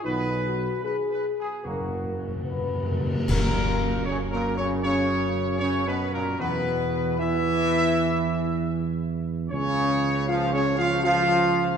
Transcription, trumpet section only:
0, 0, Header, 1, 2, 480
1, 0, Start_track
1, 0, Key_signature, 6, "major"
1, 0, Tempo, 800000
1, 38, Time_signature, 4, 2, 24, 8
1, 2438, Tempo, 782269
1, 4838, Tempo, 765306
1, 7221, End_track
2, 0, Start_track
2, 0, Title_t, "Trumpet section"
2, 0, Program_c, 0, 61
2, 26, Note_on_c, 0, 71, 116
2, 481, Note_off_c, 0, 71, 0
2, 503, Note_on_c, 0, 71, 90
2, 576, Note_off_c, 0, 71, 0
2, 665, Note_on_c, 0, 71, 90
2, 738, Note_off_c, 0, 71, 0
2, 835, Note_on_c, 0, 68, 90
2, 984, Note_off_c, 0, 68, 0
2, 988, Note_on_c, 0, 66, 74
2, 1478, Note_off_c, 0, 66, 0
2, 1971, Note_on_c, 0, 70, 118
2, 2416, Note_off_c, 0, 70, 0
2, 2428, Note_on_c, 0, 73, 105
2, 2502, Note_off_c, 0, 73, 0
2, 2594, Note_on_c, 0, 70, 102
2, 2744, Note_off_c, 0, 70, 0
2, 2747, Note_on_c, 0, 73, 107
2, 2821, Note_off_c, 0, 73, 0
2, 2909, Note_on_c, 0, 73, 114
2, 3363, Note_off_c, 0, 73, 0
2, 3380, Note_on_c, 0, 73, 112
2, 3533, Note_off_c, 0, 73, 0
2, 3542, Note_on_c, 0, 71, 104
2, 3694, Note_off_c, 0, 71, 0
2, 3702, Note_on_c, 0, 70, 103
2, 3854, Note_off_c, 0, 70, 0
2, 3867, Note_on_c, 0, 71, 112
2, 4334, Note_off_c, 0, 71, 0
2, 4358, Note_on_c, 0, 76, 126
2, 5539, Note_off_c, 0, 76, 0
2, 5796, Note_on_c, 0, 73, 127
2, 6254, Note_off_c, 0, 73, 0
2, 6277, Note_on_c, 0, 77, 123
2, 6439, Note_off_c, 0, 77, 0
2, 6442, Note_on_c, 0, 73, 114
2, 6590, Note_off_c, 0, 73, 0
2, 6604, Note_on_c, 0, 77, 125
2, 6751, Note_off_c, 0, 77, 0
2, 6764, Note_on_c, 0, 77, 127
2, 7218, Note_off_c, 0, 77, 0
2, 7221, End_track
0, 0, End_of_file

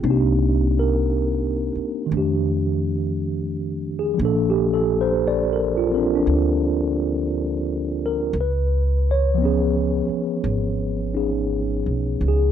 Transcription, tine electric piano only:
0, 0, Header, 1, 2, 480
1, 0, Start_track
1, 0, Tempo, 1038062
1, 15, Time_signature, 4, 2, 24, 8
1, 3855, Tempo, 1060071
1, 5749, End_track
2, 0, Start_track
2, 0, Title_t, "Tine electric piano"
2, 0, Program_c, 0, 4
2, 0, Control_c, 0, 64, 127
2, 15, Note_on_c, 0, 58, 40
2, 16, Note_on_c, 0, 62, 45
2, 21, Control_c, 0, 64, 0
2, 22, Note_on_c, 0, 63, 53
2, 24, Note_on_c, 0, 60, 40
2, 49, Note_on_c, 0, 67, 46
2, 98, Control_c, 0, 64, 127
2, 339, Note_off_c, 0, 67, 0
2, 367, Note_on_c, 0, 70, 57
2, 808, Note_off_c, 0, 70, 0
2, 954, Note_on_c, 0, 51, 39
2, 969, Note_on_c, 0, 57, 31
2, 973, Note_off_c, 0, 58, 0
2, 973, Note_off_c, 0, 62, 0
2, 976, Note_off_c, 0, 63, 0
2, 977, Note_off_c, 0, 60, 0
2, 979, Control_c, 0, 64, 0
2, 987, Note_on_c, 0, 62, 36
2, 1004, Note_on_c, 0, 67, 40
2, 1064, Control_c, 0, 64, 127
2, 1846, Note_on_c, 0, 68, 54
2, 1914, Note_on_c, 0, 53, 45
2, 1919, Note_off_c, 0, 51, 0
2, 1925, Note_off_c, 0, 68, 0
2, 1927, Note_off_c, 0, 57, 0
2, 1933, Note_on_c, 0, 58, 39
2, 1935, Control_c, 0, 64, 0
2, 1936, Note_off_c, 0, 62, 0
2, 1944, Note_off_c, 0, 67, 0
2, 1950, Note_on_c, 0, 62, 41
2, 1965, Note_on_c, 0, 69, 63
2, 2027, Control_c, 0, 64, 127
2, 2081, Note_on_c, 0, 67, 57
2, 2099, Note_off_c, 0, 69, 0
2, 2190, Note_on_c, 0, 69, 60
2, 2236, Note_off_c, 0, 67, 0
2, 2295, Note_off_c, 0, 69, 0
2, 2317, Note_on_c, 0, 72, 63
2, 2401, Note_off_c, 0, 72, 0
2, 2439, Note_on_c, 0, 74, 67
2, 2556, Note_on_c, 0, 70, 56
2, 2578, Note_off_c, 0, 74, 0
2, 2670, Note_on_c, 0, 65, 51
2, 2701, Note_off_c, 0, 65, 0
2, 2715, Note_off_c, 0, 70, 0
2, 2737, Note_on_c, 0, 60, 34
2, 2738, Note_on_c, 0, 65, 30
2, 2748, Note_on_c, 0, 70, 35
2, 2757, Note_off_c, 0, 62, 0
2, 2763, Note_on_c, 0, 62, 40
2, 2839, Note_off_c, 0, 62, 0
2, 2845, Note_on_c, 0, 62, 51
2, 3303, Note_off_c, 0, 62, 0
2, 3720, Note_off_c, 0, 70, 0
2, 3726, Note_on_c, 0, 70, 56
2, 3847, Note_off_c, 0, 53, 0
2, 3856, Note_off_c, 0, 58, 0
2, 3858, Note_off_c, 0, 60, 0
2, 3858, Note_off_c, 0, 65, 0
2, 3860, Control_c, 0, 64, 0
2, 3866, Note_off_c, 0, 70, 0
2, 3886, Note_on_c, 0, 71, 55
2, 3945, Control_c, 0, 64, 127
2, 4168, Note_off_c, 0, 71, 0
2, 4206, Note_on_c, 0, 73, 65
2, 4311, Note_on_c, 0, 53, 45
2, 4327, Note_on_c, 0, 59, 40
2, 4345, Note_on_c, 0, 61, 41
2, 4360, Note_on_c, 0, 68, 51
2, 4444, Note_off_c, 0, 73, 0
2, 5121, Note_off_c, 0, 61, 0
2, 5126, Note_on_c, 0, 61, 34
2, 5128, Note_on_c, 0, 63, 33
2, 5131, Note_off_c, 0, 68, 0
2, 5137, Note_on_c, 0, 68, 38
2, 5637, Note_off_c, 0, 68, 0
2, 5642, Note_on_c, 0, 68, 53
2, 5749, Note_off_c, 0, 53, 0
2, 5749, Note_off_c, 0, 59, 0
2, 5749, Note_off_c, 0, 61, 0
2, 5749, Note_off_c, 0, 63, 0
2, 5749, Note_off_c, 0, 68, 0
2, 5749, End_track
0, 0, End_of_file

